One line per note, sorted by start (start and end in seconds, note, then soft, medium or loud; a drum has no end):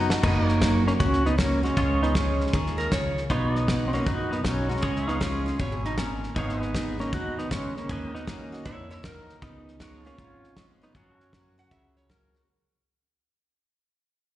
0.00 0.13 F#1 medium
0.00 0.21 F#2 loud
0.00 0.10 D#4 medium
0.00 0.21 D#4 medium
0.00 0.21 F#4 medium
0.00 0.23 F#4 medium
0.00 0.21 B4 medium
0.00 0.23 B4 medium
0.00 0.24 D#5 medium
0.10 0.24 D#4 soft
0.10 0.23 F#4 medium
0.10 0.22 A5 medium
0.10 snare medium
0.23 0.90 F#1 medium
0.23 0.98 F#2 medium
0.23 0.83 A#3 medium
0.23 0.83 D#4 medium
0.23 1.75 F#4 medium
0.23 0.45 B4 medium
0.23 0.51 D#5 medium
0.23 kick loud
0.23 snare soft
0.23 crash medium
0.45 1.76 A#4 medium
0.45 snare soft
0.51 1.76 C#5 medium
0.61 0.99 F#3 medium
0.61 0.99 A#3 medium
0.61 1.00 C#4 medium
0.61 1.00 F#4 medium
0.61 kick medium
0.61 snare loud
0.61 hi-hat pedal medium
0.87 0.92 A#3 medium
0.87 0.92 C#4 medium
0.87 snare soft
1.00 1.67 C#2 medium
1.00 1.74 C#3 medium
1.00 1.24 C#4 medium
1.00 1.26 F#4 loud
1.00 kick loud
1.00 snare soft
1.13 snare soft
1.25 1.38 B3 medium
1.25 1.38 D#4 medium
1.25 snare soft
1.38 1.62 F#3 medium
1.38 1.62 A#3 medium
1.38 1.63 A#3 medium
1.38 1.63 C#4 medium
1.38 1.62 F#4 medium
1.38 kick medium
1.38 snare loud
1.38 hi-hat pedal medium
1.63 1.99 G#3 medium
1.63 2.03 C#4 medium
1.63 1.77 C#4 soft
1.63 1.76 F#4 medium
1.63 snare soft
1.77 2.43 C#2 medium
1.77 2.51 C#3 medium
1.77 3.29 F4 medium
1.77 3.29 G#4 medium
1.77 3.30 C#5 medium
1.77 kick loud
1.77 snare soft
2.02 2.15 B3 medium
2.02 2.15 D#4 medium
2.02 snare soft
2.15 2.52 F3 medium
2.15 2.52 G#3 medium
2.15 2.53 C#4 medium
2.15 2.54 C#4 medium
2.15 2.53 F4 medium
2.15 kick medium
2.15 snare loud
2.15 hi-hat pedal medium
2.40 snare soft
2.47 snare soft
2.53 2.86 D#2 medium
2.53 2.91 D#3 medium
2.53 2.78 G#4 medium
2.53 kick loud
2.53 snare soft
2.66 snare soft
2.78 2.91 A#4 medium
2.78 snare soft
2.92 3.24 C#2 medium
2.92 3.29 C#3 medium
2.92 3.22 C#5 medium
2.92 kick medium
2.92 snare loud
2.92 hi-hat pedal medium
3.17 snare soft
3.30 3.96 B1 medium
3.30 4.04 B2 medium
3.30 3.84 B3 medium
3.30 3.89 D#4 medium
3.30 3.51 F4 medium
3.30 4.82 B4 medium
3.30 3.58 C#5 medium
3.30 kick loud
3.30 snare soft
3.51 4.82 F#4 medium
3.55 4.83 D#5 medium
3.55 snare soft
3.68 3.92 F#3 medium
3.68 3.93 B3 medium
3.68 3.93 D#4 medium
3.68 3.92 F#4 medium
3.68 kick medium
3.68 snare loud
3.68 hi-hat pedal medium
3.88 3.93 C4 medium
3.93 4.07 A#3 medium
3.93 4.07 C#4 medium
3.93 4.07 D#4 soft
3.93 4.06 F#4 medium
3.93 snare soft
4.06 4.39 A#1 medium
4.06 4.80 F#2 medium
4.06 4.30 D#4 medium
4.06 4.32 F#4 loud
4.06 kick loud
4.06 snare soft
4.31 4.44 B3 medium
4.31 4.43 D#4 medium
4.31 snare soft
4.44 4.77 B1 medium
4.44 4.69 F#3 medium
4.44 4.69 B3 medium
4.44 4.68 C#4 medium
4.44 4.70 D#4 medium
4.44 4.68 F#4 medium
4.44 kick medium
4.44 snare loud
4.44 hi-hat pedal medium
4.69 5.06 G#3 medium
4.69 5.05 C#4 medium
4.69 4.83 D#4 soft
4.69 4.82 F#4 medium
4.69 snare soft
4.76 snare soft
4.82 5.49 C#2 medium
4.82 5.57 C#3 medium
4.82 6.34 G#4 medium
4.82 6.35 C#5 medium
4.82 5.10 D#5 medium
4.82 kick loud
4.82 snare soft
4.96 snare soft
5.08 5.21 B3 medium
5.08 5.22 D#4 medium
5.08 6.35 F5 medium
5.08 snare soft
5.20 5.45 F3 medium
5.20 5.46 G#3 medium
5.20 5.58 G#3 medium
5.20 5.57 C#4 medium
5.20 5.46 C#4 medium
5.20 5.45 F4 medium
5.20 kick medium
5.20 snare loud
5.20 hi-hat pedal medium
5.46 5.60 C#4 soft
5.46 5.59 F4 medium
5.46 snare soft
5.59 6.26 G#1 medium
5.59 5.97 B2 medium
5.59 5.72 C#5 medium
5.59 kick loud
5.59 snare soft
5.72 5.85 G#4 medium
5.85 5.98 D#4 medium
5.85 snare soft
5.98 6.35 A#2 medium
5.98 6.29 C#4 medium
5.98 kick medium
5.98 snare loud
5.98 hi-hat pedal medium
6.23 snare soft
6.36 7.03 G#1 medium
6.36 7.10 G#2 medium
6.36 6.96 B3 medium
6.36 6.95 D#4 medium
6.36 7.88 G#4 medium
6.36 6.63 C#5 medium
6.36 6.64 F5 medium
6.36 kick loud
6.36 snare soft
6.49 snare soft
6.62 7.89 B4 medium
6.62 7.89 D#5 medium
6.62 snare soft
6.74 6.99 G#3 medium
6.74 6.99 B3 medium
6.74 6.99 D#4 medium
6.74 6.98 G#4 medium
6.74 kick medium
6.74 snare loud
6.74 hi-hat pedal medium
6.99 7.12 A#3 medium
6.99 7.13 C#4 medium
6.99 7.13 D#4 soft
6.99 7.12 G#4 medium
6.99 snare soft
7.13 7.79 D#2 medium
7.13 7.50 B2 medium
7.13 7.37 D#4 medium
7.13 7.37 F#4 loud
7.13 kick loud
7.13 snare soft
7.38 7.51 B3 medium
7.38 7.52 D#4 medium
7.38 snare soft
7.51 7.88 C#3 medium
7.51 7.75 G#3 medium
7.51 7.76 C#4 medium
7.51 kick medium
7.51 snare loud
7.51 hi-hat pedal medium
7.76 8.12 A#3 medium
7.76 8.14 C#4 medium
7.76 snare soft
7.89 8.56 D#2 medium
7.89 8.26 D#3 medium
7.89 8.16 G#4 medium
7.89 8.11 B4 medium
7.89 9.42 D#5 medium
7.89 kick loud
7.89 snare soft
8.11 8.27 B3 medium
8.11 8.28 D#4 medium
8.11 9.42 A#4 medium
8.11 snare soft
8.16 9.41 F#4 medium
8.27 8.51 D#3 medium
8.27 8.63 A#3 medium
8.27 8.52 A#3 medium
8.27 8.66 C#4 medium
8.27 8.52 D#4 medium
8.27 8.51 F#4 medium
8.27 kick medium
8.27 snare loud
8.27 hi-hat pedal medium
8.52 8.66 D#4 soft
8.52 8.65 F#4 medium
8.52 snare soft
8.65 8.98 F2 medium
8.65 9.39 A#2 medium
8.65 8.89 E4 medium
8.65 8.90 C#5 medium
8.65 kick loud
8.65 snare soft
8.90 9.03 E4 medium
8.90 9.04 C#5 medium
8.90 snare soft
9.03 9.36 D#2 medium
9.03 9.40 D#3 medium
9.03 9.41 A#3 medium
9.03 9.41 D#4 medium
9.03 9.41 F#4 medium
9.03 9.35 A#4 medium
9.03 kick medium
9.03 snare loud
9.03 hi-hat pedal medium
9.29 snare soft
9.42 10.08 C#2 medium
9.42 10.16 C#3 medium
9.42 10.02 B3 medium
9.42 10.08 D#4 medium
9.42 kick loud
9.42 snare soft
9.68 snare soft
9.80 10.04 F3 medium
9.80 10.04 G#3 medium
9.80 10.05 B3 medium
9.80 10.04 F4 medium
9.80 10.01 F#4 medium
9.80 10.07 A#4 medium
9.80 10.95 C#5 medium
9.80 kick medium
9.80 snare loud
9.80 hi-hat pedal medium
10.01 10.94 F4 medium
10.01 10.18 F4 medium
10.01 snare soft
10.06 10.18 A#3 medium
10.06 10.19 B3 soft
10.06 10.18 C#4 medium
10.06 10.95 G#4 medium
10.18 10.85 G#1 medium
10.18 10.93 G#2 medium
10.18 10.55 C#4 medium
10.18 10.58 F4 loud
10.18 kick loud
10.18 snare soft
10.44 snare soft
10.56 10.81 F3 medium
10.56 10.81 G#3 medium
10.56 10.64 G#3 medium
10.56 10.81 B3 medium
10.56 10.64 C#4 medium
10.56 10.80 F4 medium
10.56 kick medium
10.56 snare loud
10.56 hi-hat pedal medium
10.81 10.95 B3 medium
10.81 10.95 B3 soft
10.81 10.95 D#4 medium
10.81 10.94 F4 medium
10.81 snare soft
10.95 11.61 F#2 medium
10.95 11.69 F#2 medium
10.95 12.06 C#4 medium
10.95 11.15 F4 medium
10.95 12.10 F#4 medium
10.95 11.21 G#4 medium
10.95 12.47 C#5 medium
10.95 kick loud
10.95 snare soft
11.15 12.46 F#4 medium
11.20 12.47 A#4 medium
11.20 snare soft
11.33 11.57 F#3 medium
11.33 11.57 A#3 medium
11.33 11.58 C#4 medium
11.33 11.57 F#4 medium
11.33 kick medium
11.33 snare loud
11.33 hi-hat pedal medium
11.58 11.72 C#4 soft
11.58 11.71 F#4 medium
11.58 11.71 F#5 loud
11.58 snare soft
11.71 12.38 C#2 medium
11.71 12.45 C#3 medium
11.71 11.96 E5 medium
11.71 kick loud
11.71 snare soft
11.97 12.09 C#5 medium
11.97 snare soft
12.09 12.33 F#3 medium
12.09 12.34 A#3 medium
12.09 12.34 C#4 medium
12.09 12.33 F#4 medium
12.09 12.40 A#4 medium
12.09 kick medium
12.09 snare loud
12.09 hi-hat pedal medium
12.34 12.48 C#4 soft
12.34 12.47 F#4 medium
12.34 snare soft